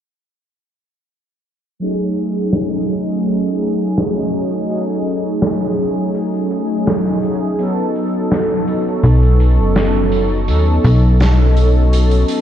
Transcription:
1.80 4.29 F#3 medium
1.80 4.29 A3 medium
1.80 4.30 C#4 medium
1.80 4.30 D#4 medium
1.80 4.31 G#4 loud
1.80 closed hi-hat medium
2.17 closed hi-hat medium
2.53 snare loud
2.53 closed hi-hat medium
2.89 closed hi-hat medium
3.26 closed hi-hat medium
3.44 closed hi-hat soft
3.62 closed hi-hat medium
3.98 snare loud
3.98 closed hi-hat medium
4.33 4.65 F#3 medium
4.33 4.66 A3 medium
4.33 4.66 C#4 medium
4.33 4.66 D#4 medium
4.33 4.66 G#4 medium
4.33 closed hi-hat medium
4.68 7.18 F#3 medium
4.68 7.18 A3 medium
4.68 7.19 C#4 medium
4.68 7.19 D#4 medium
4.68 7.19 G#4 loud
4.68 closed hi-hat medium
5.07 closed hi-hat medium
5.42 snare loud
5.42 closed hi-hat medium
5.78 closed hi-hat medium
6.14 closed hi-hat medium
6.34 closed hi-hat soft
6.51 closed hi-hat medium
6.87 snare loud
6.87 closed hi-hat medium
7.22 7.55 F#3 medium
7.22 7.55 A3 medium
7.22 7.55 C#4 medium
7.22 7.55 D#4 medium
7.22 7.55 G#4 medium
7.22 closed hi-hat medium
7.58 10.07 F#3 medium
7.58 10.08 B3 medium
7.58 10.08 C#4 medium
7.58 10.08 D#4 medium
7.58 12.41 A4 medium
7.58 10.09 A4 loud
7.58 12.41 D#5 medium
7.58 12.41 C#6 medium
7.58 closed hi-hat medium
7.96 closed hi-hat medium
8.32 snare loud
8.32 closed hi-hat medium
8.67 closed hi-hat medium
9.03 9.60 B1 medium
9.03 closed hi-hat medium
9.23 closed hi-hat soft
9.40 closed hi-hat medium
9.59 10.50 F#1 medium
9.76 snare loud
9.76 closed hi-hat medium
10.11 10.44 F#3 medium
10.11 10.44 B3 medium
10.11 10.44 C#4 medium
10.11 10.44 D#4 medium
10.11 10.45 A4 medium
10.11 closed hi-hat medium
10.47 10.79 D#2 loud
10.47 12.41 F#3 medium
10.47 12.41 B3 medium
10.47 12.41 C#4 medium
10.47 12.41 D#4 medium
10.47 12.41 A4 loud
10.47 closed hi-hat medium
10.84 12.25 B1 loud
10.84 closed hi-hat medium
11.20 snare loud
11.20 closed hi-hat medium
11.57 closed hi-hat medium
11.93 closed hi-hat medium
12.11 closed hi-hat soft
12.28 closed hi-hat medium

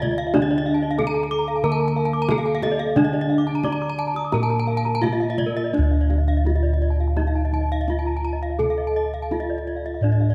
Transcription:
0.00 0.94 D3 medium
0.00 0.35 F4 medium
0.00 0.10 D5 medium
0.00 kendang low medium
0.11 0.19 D#5 medium
0.18 0.26 F5 medium
0.27 0.34 D#5 medium
0.34 1.63 D3 medium
0.34 2.25 D4 medium
0.34 0.98 D4 medium
0.34 0.42 D5 medium
0.34 kendang high medium
0.34 kendang low medium
0.42 0.50 D#5 medium
0.51 0.58 D5 medium
0.51 kendang slap soft
0.58 0.66 D#5 medium
0.66 0.74 F5 medium
0.74 0.82 A5 soft
0.83 0.90 D#5 medium
0.91 0.98 F5 medium
0.98 1.07 D#4 soft
0.98 1.63 A4 medium
0.98 1.06 A5 medium
0.98 kendang high medium
0.98 kendang low soft
1.07 1.15 A#5 medium
1.14 1.22 A5 medium
1.23 1.31 A#5 medium
1.31 1.39 D6 medium
1.39 1.47 A#5 medium
1.48 1.55 F5 medium
1.56 1.64 A5 medium
1.63 3.60 D3 medium
1.63 2.97 A#3 medium
1.63 2.29 A#4 medium
1.63 1.72 A#5 medium
1.72 1.80 A5 medium
1.80 1.88 A#5 medium
1.88 1.96 A5 medium
1.96 2.04 F5 medium
2.05 2.13 A5 medium
2.13 2.21 D6 medium
2.22 2.30 A#5 medium
2.29 2.37 D#4 soft
2.29 2.97 A4 medium
2.29 2.38 A5 medium
2.29 kendang high medium
2.29 kendang low medium
2.38 2.46 F5 medium
2.46 2.54 A5 medium
2.55 2.63 F5 medium
2.62 2.71 D#5 medium
2.62 kendang high medium
2.62 kendang low medium
2.72 2.80 D5 medium
2.79 2.88 F5 medium
2.87 2.96 D#5 medium
2.96 4.33 D3 medium
2.96 4.99 D4 medium
2.96 3.64 D4 medium
2.96 3.04 D5 medium
2.96 kendang low medium
3.05 3.13 D#5 medium
3.13 3.22 D5 medium
3.13 kendang slap soft
3.21 3.30 D#5 medium
3.30 3.38 F5 medium
3.38 3.47 D6 soft
3.47 3.55 A5 medium
3.55 3.64 A#5 medium
3.63 3.73 D#4 soft
3.63 4.33 D5 medium
3.63 3.73 D6 medium
3.63 kendang high medium
3.63 kendang low medium
3.72 3.81 A#5 medium
3.82 3.90 D6 medium
3.90 3.98 A#5 medium
3.99 4.07 A5 medium
4.07 4.16 A#5 medium
4.14 4.25 D#6 medium
4.14 kendang slap soft
4.25 4.33 D6 medium
4.32 6.41 A#2 soft
4.32 5.73 A#3 medium
4.32 5.03 A#4 medium
4.32 4.41 A#5 medium
4.32 kendang high soft
4.43 4.51 A5 medium
4.50 4.59 A#5 medium
4.50 kendang slap soft
4.60 4.68 A5 medium
4.67 4.76 F5 medium
4.77 4.86 A5 medium
4.85 4.94 A#5 medium
4.85 kendang slap soft
4.95 5.03 A5 medium
5.02 5.11 D#4 soft
5.02 5.73 F4 medium
5.02 5.11 F5 medium
5.02 kendang high medium
5.02 kendang low medium
5.13 5.21 D#5 soft
5.20 5.29 F5 medium
5.20 kendang slap soft
5.30 5.38 D#5 medium
5.38 5.47 D5 medium
5.38 kendang low medium
5.46 5.55 A#4 medium
5.57 5.65 D#5 medium
5.57 kendang slap soft
5.64 5.72 D5 medium
5.73 7.84 D4 medium
5.73 6.45 D4 soft
5.73 5.82 D5 medium
5.73 kendang low soft
5.78 10.00 D2 medium
5.83 5.92 D#5 soft
5.91 6.00 F5 soft
6.01 6.10 D5 soft
6.10 6.18 F5 soft
6.10 kendang high soft
6.18 6.27 D#5 soft
6.28 6.36 F5 soft
6.37 6.45 D#5 soft
6.45 6.53 D#4 soft
6.45 7.17 F4 soft
6.45 6.54 F5 soft
6.45 kendang high soft
6.56 6.64 D#5 soft
6.63 6.72 D5 soft
6.74 6.82 D#5 soft
6.82 6.90 D5 soft
6.90 6.99 A5 soft
7.00 7.08 F5 soft
7.00 kendang slap soft
7.08 7.16 A5 soft
7.17 7.88 D#4 soft
7.17 7.26 D#5 medium
7.17 kendang high soft
7.27 7.35 F5 soft
7.35 7.44 A5 soft
7.35 kendang slap soft
7.45 7.53 D#5 soft
7.53 7.62 A5 soft
7.53 kendang low soft
7.61 7.70 D#5 soft
7.72 7.80 F5 medium
7.81 7.89 D#5 soft
7.88 7.96 D#4 soft
7.88 8.60 F4 medium
7.88 7.97 F5 soft
7.88 kendang low soft
7.99 8.07 A5 soft
8.06 8.15 A#5 soft
8.17 8.25 A5 soft
8.25 8.33 A#5 soft
8.33 8.42 D#5 soft
8.43 8.51 F5 soft
8.50 8.59 D#5 soft
8.59 9.30 A4 soft
8.59 10.35 A4 medium
8.59 8.68 A5 soft
8.59 kendang low soft
8.70 8.78 F5 soft
8.78 8.86 D#5 soft
8.87 8.96 A5 soft
8.96 9.05 D#5 soft
9.05 9.13 A5 soft
9.14 9.22 F5 soft
9.22 9.31 A5 soft
9.31 9.39 D#4 soft
9.31 10.03 F4 soft
9.31 9.40 F5 medium
9.31 kendang high soft
9.40 9.49 D#5 soft
9.50 9.58 D5 soft
9.58 9.67 D#5 soft
9.67 9.76 D5 soft
9.76 9.85 F5 soft
9.84 9.94 D#5 soft
9.84 kendang slap soft
9.94 10.03 F5 soft
10.01 10.35 A2 medium
10.01 10.35 D4 soft
10.01 10.11 D5 medium
10.12 10.20 D#5 soft
10.20 10.29 F5 soft
10.20 kendang slap soft
10.30 10.35 D5 soft

